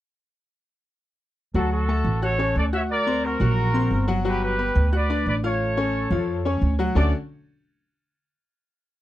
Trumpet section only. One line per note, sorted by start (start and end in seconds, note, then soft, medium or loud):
1.56 1.71 F#4 medium
1.56 1.71 A4 medium
1.72 2.19 F#4 medium
1.72 2.19 A4 medium
2.23 2.55 A4 medium
2.23 2.54 C#5 loud
2.57 2.65 A4 medium
2.57 2.65 D5 medium
2.74 2.82 C#5 medium
2.74 2.82 E5 medium
2.91 3.22 A#4 medium
2.91 3.22 D5 loud
3.25 4.09 F#4 medium
3.25 4.09 A#4 loud
4.27 4.42 G4 medium
4.27 4.42 B4 medium
4.43 4.90 G4 medium
4.43 4.90 B4 medium
4.95 5.27 B4 medium
4.95 5.26 D5 medium
5.28 5.35 B4 medium
5.28 5.35 D5 medium
5.45 6.59 A4 medium
5.45 6.59 C#5 medium
6.97 7.12 D5 medium